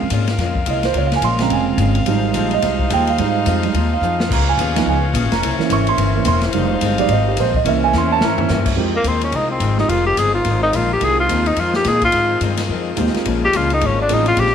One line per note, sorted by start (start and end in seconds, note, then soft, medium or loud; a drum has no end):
0.00 0.10 F2 medium
0.00 2.03 F4 medium
0.00 2.05 A#4 medium
0.00 5.39 F5 medium
0.10 0.37 G#2 medium
0.10 0.30 A#2 medium
0.10 0.30 G#3 medium
0.10 0.30 C#4 medium
0.10 hi-hat pedal medium
0.10 ride medium
0.14 0.31 F4 medium
0.27 snare soft
0.27 ride medium
0.38 0.65 F2 medium
0.38 0.58 A#2 soft
0.38 0.58 G#3 medium
0.38 snare soft
0.38 ride medium
0.42 0.59 C#4 medium
0.42 0.59 F4 medium
0.55 kick medium
0.66 0.93 C2 loud
0.66 0.85 A#2 medium
0.66 0.86 G#3 medium
0.66 0.86 C#4 medium
0.66 0.86 F4 medium
0.66 0.85 D#5 medium
0.66 hi-hat pedal medium
0.66 ride medium
0.83 0.95 C5 medium
0.83 snare soft
0.83 ride soft
0.94 1.21 C#2 medium
0.94 1.13 A#2 medium
0.94 1.14 G#3 medium
0.94 1.14 C#4 medium
0.94 1.05 C#5 medium
0.94 ride medium
0.98 1.14 F4 soft
1.07 1.15 F5 medium
1.12 snare soft
1.12 ride medium
1.16 1.24 G#5 medium
1.21 1.49 A#1 medium
1.21 1.41 A#2 medium
1.21 1.41 G#3 medium
1.21 1.42 C#4 medium
1.21 1.42 F4 medium
1.21 1.40 C6 medium
1.21 hi-hat pedal medium
1.21 ride medium
1.39 2.04 C#3 medium
1.39 2.04 G#3 medium
1.39 2.04 C4 medium
1.39 1.52 A#5 medium
1.39 snare medium
1.39 ride medium
1.50 1.77 F1 medium
1.50 1.69 A#2 soft
1.50 1.69 G#3 soft
1.50 1.70 C#4 soft
1.50 1.70 F4 medium
1.50 1.78 G#5 medium
1.50 ride medium
1.78 2.05 G1 loud
1.78 1.97 A#2 medium
1.78 1.97 G#3 medium
1.78 1.98 C#4 medium
1.78 1.98 F4 medium
1.78 hi-hat pedal medium
1.78 ride medium
1.95 ride soft
2.06 2.33 G#1 loud
2.06 2.25 F3 medium
2.06 3.15 G3 soft
2.06 3.15 G#3 soft
2.06 2.26 C4 medium
2.06 4.28 D#4 medium
2.06 3.15 D#4 medium
2.06 2.26 D#4 medium
2.06 5.39 F4 medium
2.06 4.28 C5 medium
2.06 ride medium
2.10 2.27 G#4 medium
2.34 2.62 A#1 medium
2.34 2.53 F3 medium
2.34 2.53 C4 medium
2.34 2.54 D#4 medium
2.34 2.54 G#4 medium
2.34 hi-hat pedal medium
2.34 ride medium
2.51 2.89 D#5 medium
2.51 ride soft
2.62 2.90 C2 medium
2.62 2.81 F3 soft
2.62 2.81 C4 medium
2.62 2.82 D#4 medium
2.62 2.82 G#4 medium
2.62 snare soft
2.62 ride medium
2.79 kick medium
2.90 3.18 D#2 loud
2.90 3.08 F3 medium
2.90 3.09 C4 medium
2.90 3.09 D#4 medium
2.90 3.09 G#4 medium
2.90 3.09 G5 medium
2.90 hi-hat pedal medium
2.90 ride medium
3.07 3.45 F5 medium
3.07 ride soft
3.18 3.45 G#2 medium
3.18 3.37 F3 soft
3.18 3.63 G3 soft
3.18 3.63 G#3 soft
3.18 3.37 C4 soft
3.18 3.64 D#4 medium
3.18 3.38 D#4 medium
3.18 3.38 G#4 medium
3.18 ride medium
3.46 3.73 F2 medium
3.46 3.64 F3 medium
3.46 3.65 C4 medium
3.46 3.66 D#4 medium
3.46 3.66 G#4 medium
3.46 3.64 F5 medium
3.46 hi-hat pedal medium
3.46 ride medium
3.63 3.74 G3 soft
3.63 3.74 G#3 soft
3.63 3.75 D#4 soft
3.63 ride soft
3.74 4.00 D#2 medium
3.74 3.93 F3 medium
3.74 3.93 C4 medium
3.74 3.93 D#4 medium
3.74 3.94 G#4 medium
3.74 ride medium
3.93 4.29 F5 medium
4.01 4.29 F2 loud
4.01 4.21 F3 medium
4.01 4.21 C4 medium
4.01 hi-hat pedal medium
4.05 4.22 D#4 medium
4.05 4.22 G#4 medium
4.20 snare medium
4.30 4.57 C#2 medium
4.30 4.49 C#3 soft
4.30 4.49 B3 soft
4.30 6.52 C#4 medium
4.30 4.50 F4 soft
4.30 5.42 B4 medium
4.30 4.48 A#5 medium
4.30 kick medium
4.30 crash medium
4.35 4.51 G#4 medium
4.49 4.85 G#5 medium
4.57 4.85 D#2 loud
4.57 4.77 C#3 medium
4.57 4.77 B3 medium
4.57 4.78 F4 medium
4.57 4.78 G#4 medium
4.57 hi-hat pedal medium
4.57 ride medium
4.75 4.92 F3 soft
4.75 4.92 B3 soft
4.75 4.93 D#4 medium
4.75 snare medium
4.75 ride medium
4.86 5.13 C#2 medium
4.86 5.04 C#3 medium
4.86 5.05 B3 soft
4.86 5.05 F4 soft
4.86 5.06 G#4 soft
4.86 5.04 G#5 medium
5.13 5.23 A#1 loud
5.13 5.32 C#3 medium
5.13 5.32 B3 medium
5.13 5.33 F4 medium
5.13 5.33 G#4 medium
5.13 hi-hat pedal medium
5.13 ride medium
5.23 5.32 G#1 medium
5.32 5.41 F1 medium
5.32 5.68 A#5 medium
5.32 snare medium
5.32 ride medium
5.42 5.58 C2 medium
5.42 5.60 C3 soft
5.42 5.61 E3 soft
5.42 5.61 A#3 soft
5.42 5.62 C#4 medium
5.42 6.54 A#4 medium
5.42 7.48 C5 medium
5.42 6.54 E5 medium
5.42 ride medium
5.59 6.14 E3 medium
5.59 6.14 A#3 soft
5.59 6.15 C#4 medium
5.59 muted upright bass stroke soft
5.59 snare soft
5.70 5.97 G#1 medium
5.70 5.88 C3 medium
5.70 5.88 E3 medium
5.70 5.88 A#3 medium
5.70 5.89 C#4 medium
5.70 5.88 C#6 medium
5.70 hi-hat pedal medium
5.70 ride medium
5.87 6.24 C6 loud
5.87 ride medium
5.97 6.25 G1 medium
5.97 6.16 C3 medium
5.97 6.16 E3 medium
5.97 6.17 A#3 medium
5.97 6.17 C#4 medium
5.97 ride medium
6.16 6.25 E3 soft
6.16 6.25 A#3 soft
6.16 6.26 C#4 soft
6.24 6.53 E1 loud
6.24 6.43 C3 medium
6.24 6.44 E3 medium
6.24 6.44 A#3 medium
6.24 6.45 C#4 medium
6.24 6.37 C6 medium
6.24 hi-hat pedal medium
6.24 ride medium
6.41 snare soft
6.41 ride soft
6.52 6.81 F1 medium
6.52 6.72 F2 medium
6.52 6.72 D#3 medium
6.52 6.97 G3 soft
6.52 6.97 G#3 soft
6.52 6.73 G#3 medium
6.52 6.73 C4 medium
6.52 7.48 D#4 medium
6.52 6.98 D#4 medium
6.52 7.48 F4 medium
6.52 7.48 F5 medium
6.52 ride medium
6.81 7.08 G1 medium
6.81 7.00 F2 medium
6.81 7.01 D#3 medium
6.81 7.01 G#3 medium
6.81 7.01 C4 medium
6.81 hi-hat pedal medium
6.81 ride medium
6.98 7.09 G3 medium
6.98 7.09 G#3 soft
6.98 7.09 D#4 medium
6.98 7.10 D5 medium
6.98 ride medium
7.09 7.36 G#1 medium
7.09 7.28 F2 soft
7.09 7.29 D#3 medium
7.09 7.29 G#3 soft
7.09 7.27 D#5 medium
7.09 ride medium
7.13 7.30 C4 medium
7.27 7.38 G4 medium
7.37 7.64 A#1 loud
7.37 7.56 F2 medium
7.37 7.57 D#3 medium
7.37 7.57 G#3 medium
7.37 7.56 C5 medium
7.37 hi-hat pedal medium
7.37 ride medium
7.41 7.58 C4 medium
7.54 7.62 D#5 medium
7.54 kick medium
7.64 7.93 C2 medium
7.64 7.84 C3 soft
7.64 8.39 E3 medium
7.64 7.85 E3 medium
7.64 8.38 A#3 soft
7.64 7.85 A#3 soft
7.64 8.76 C#4 medium
7.64 8.39 C#4 medium
7.64 8.77 A#4 medium
7.64 8.77 C5 medium
7.64 7.66 D#5 soft
7.64 8.76 E5 loud
7.64 ride medium
7.68 7.86 C#4 medium
7.68 7.84 E5 medium
7.84 7.94 G#5 medium
7.93 8.20 E2 medium
7.93 8.13 C3 medium
7.93 8.13 E3 medium
7.93 8.14 A#3 medium
7.93 8.14 C#4 medium
7.93 snare medium
7.93 hi-hat pedal medium
7.98 8.12 C6 medium
8.12 8.23 A5 loud
8.21 8.49 G#2 medium
8.21 8.40 C3 medium
8.21 8.41 E3 soft
8.21 8.41 A#3 medium
8.21 8.70 A#5 medium
8.21 snare medium
8.26 8.42 C#4 soft
8.38 8.50 E3 soft
8.38 8.49 A#3 soft
8.38 8.50 C#4 medium
8.38 floor tom medium
8.49 8.76 G2 loud
8.49 8.68 C3 medium
8.49 8.68 E3 medium
8.49 8.69 A#3 medium
8.49 8.69 C#4 medium
8.49 snare medium
8.49 hi-hat pedal medium
8.66 kick medium
8.66 crash medium
8.76 9.03 F2 medium
8.76 8.96 F2 medium
8.76 13.21 D#3 medium
8.76 8.96 D#3 medium
8.76 8.92 G#3 medium
8.76 14.55 G#3 medium
8.76 8.97 G#3 medium
8.76 8.93 C4 medium
8.76 13.22 C4 medium
8.76 8.93 D#4 medium
8.76 14.55 F4 medium
8.76 8.93 F4 medium
8.76 8.93 G4 medium
8.81 8.97 C4 medium
8.96 9.10 A#3 medium
9.04 9.31 D#2 medium
9.04 9.23 F2 medium
9.04 9.24 D#3 medium
9.04 9.25 G#3 medium
9.04 9.25 C4 medium
9.04 hi-hat pedal medium
9.04 ride medium
9.08 9.24 C4 medium
9.21 9.37 C#4 medium
9.21 ride medium
9.32 9.59 C2 medium
9.32 9.52 F2 soft
9.32 9.53 D#3 soft
9.32 9.50 D#4 loud
9.32 ride medium
9.37 9.53 G#3 medium
9.37 9.54 C4 soft
9.51 9.79 C4 medium
9.60 9.88 G#1 loud
9.60 9.80 F2 medium
9.60 9.80 D#3 medium
9.60 9.80 G#3 medium
9.60 9.81 C4 medium
9.60 hi-hat pedal medium
9.60 ride medium
9.78 9.88 G#3 medium
9.78 9.89 C4 medium
9.78 9.89 D#4 medium
9.78 9.91 D#4 medium
9.78 9.89 F4 medium
9.78 9.90 G4 medium
9.78 snare soft
9.89 10.17 F1 medium
9.89 10.08 F2 soft
9.89 10.09 D#3 soft
9.89 10.09 G#3 soft
9.89 10.06 F4 medium
9.89 ride medium
9.94 10.10 C4 medium
10.06 10.20 G4 medium
10.17 10.45 G1 medium
10.17 10.36 F2 medium
10.17 10.36 D#3 medium
10.17 10.37 G#3 medium
10.17 10.37 C4 medium
10.17 10.34 G#4 loud
10.17 hi-hat pedal medium
10.17 ride medium
10.34 10.62 F4 medium
10.45 10.73 G#1 medium
10.45 10.64 F2 soft
10.45 10.65 D#3 soft
10.45 10.65 G#3 soft
10.45 10.65 C4 medium
10.45 ride medium
10.63 10.78 D#4 loud
10.73 11.01 A#1 loud
10.73 10.92 F2 medium
10.73 10.92 D#3 medium
10.73 10.93 G#3 medium
10.73 10.93 C4 medium
10.73 10.92 F4 medium
10.73 hi-hat pedal medium
10.73 ride medium
10.93 11.05 G4 loud
11.00 11.29 C2 medium
11.00 11.19 F2 soft
11.00 11.20 D#3 soft
11.00 11.43 G#3 medium
11.00 11.21 G#3 soft
11.00 11.43 C4 medium
11.00 11.43 D#4 medium
11.00 11.43 F4 medium
11.00 11.44 G4 medium
11.00 11.19 G#4 loud
11.00 ride medium
11.04 11.21 C4 medium
11.20 11.49 F4 medium
11.29 11.56 D#2 medium
11.29 11.48 F2 medium
11.29 11.48 D#3 medium
11.29 11.49 G#3 medium
11.29 11.49 C4 medium
11.29 hi-hat pedal medium
11.29 ride medium
11.46 11.62 D#4 medium
11.46 ride soft
11.56 11.84 F2 medium
11.56 11.76 F2 soft
11.56 11.76 D#3 soft
11.56 11.77 G#3 soft
11.56 11.77 C4 soft
11.56 11.75 F4 medium
11.56 ride medium
11.74 11.89 G4 medium
11.74 snare medium
11.84 12.04 F2 medium
11.84 12.13 A#2 medium
11.84 12.04 D#3 medium
11.84 12.05 G#3 medium
11.84 12.05 C4 medium
11.84 12.04 G#4 loud
11.84 snare soft
11.84 hi-hat pedal medium
11.84 ride medium
12.02 12.40 F4 loud
12.02 kick medium
12.02 ride soft
12.12 12.32 F2 soft
12.12 12.40 G#2 medium
12.12 12.32 D#3 soft
12.12 12.33 G#3 medium
12.12 ride medium
12.17 12.33 C4 soft
12.41 12.60 F2 medium
12.41 12.68 G2 medium
12.41 12.60 D#3 medium
12.41 12.61 G#3 medium
12.41 12.61 C4 medium
12.41 hi-hat pedal medium
12.41 ride medium
12.57 snare soft
12.57 ride medium
12.69 12.97 F2 medium
12.69 12.88 F2 soft
12.69 12.88 D#3 medium
12.69 12.89 G#3 medium
12.73 12.90 C4 medium
12.96 13.13 D#2 loud
12.96 13.15 F2 medium
12.96 13.16 D#3 medium
12.96 13.25 G#3 medium
12.96 13.16 G#3 medium
12.96 13.25 C4 medium
12.96 13.16 C4 medium
12.96 13.26 D#4 medium
12.96 13.26 F4 medium
12.96 13.26 G4 medium
12.96 hi-hat pedal medium
12.96 ride medium
13.07 snare soft
13.14 muted upright bass stroke soft
13.14 snare soft
13.14 ride soft
13.25 13.53 A#1 medium
13.25 13.43 A#2 medium
13.25 14.55 C#3 medium
13.25 13.44 F3 soft
13.25 13.44 G#3 medium
13.25 14.55 A#3 medium
13.25 13.45 C#4 medium
13.25 ride medium
13.45 13.58 G4 loud
13.53 13.81 C#2 medium
13.53 13.72 A#2 medium
13.53 13.72 F3 medium
13.53 13.73 G#3 medium
13.53 13.73 C#4 medium
13.53 13.72 F4 medium
13.53 hi-hat pedal medium
13.53 ride medium
13.70 13.87 D#4 medium
13.70 ride soft
13.81 14.09 G#1 medium
13.81 13.99 A#2 soft
13.81 14.00 F3 medium
13.81 14.00 G#3 soft
13.81 14.01 C#4 medium
13.81 ride medium
13.86 14.01 C#4 medium
14.01 14.14 D4 medium
14.09 14.36 A1 medium
14.09 14.27 A#2 medium
14.09 14.28 F3 medium
14.09 14.28 G#3 medium
14.09 14.51 A#3 medium
14.09 14.51 C4 medium
14.09 14.51 C#4 medium
14.09 14.28 C#4 medium
14.09 14.52 F4 medium
14.09 14.52 G#4 medium
14.09 hi-hat pedal medium
14.09 ride medium
14.13 14.27 D#4 loud
14.26 14.41 F4 loud
14.26 ride medium
14.36 14.55 A#1 medium
14.36 14.55 A#2 soft
14.36 14.55 F3 medium
14.36 14.55 G#3 soft
14.36 14.55 C#4 medium
14.36 14.55 G4 loud
14.36 ride medium
14.46 snare soft